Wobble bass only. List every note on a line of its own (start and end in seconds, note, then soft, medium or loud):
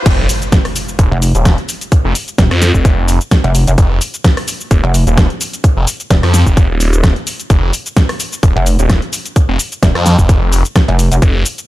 1.12 1.33 F1 loud
2.38 2.49 D#1 loud
3.44 3.65 F1 loud
3.67 3.76 F1 loud
4.84 5.05 F1 loud
6.10 6.21 D#1 loud
8.56 8.77 F1 medium
9.83 9.93 D#1 medium
10.88 11.10 F1 loud
11.12 11.20 F1 loud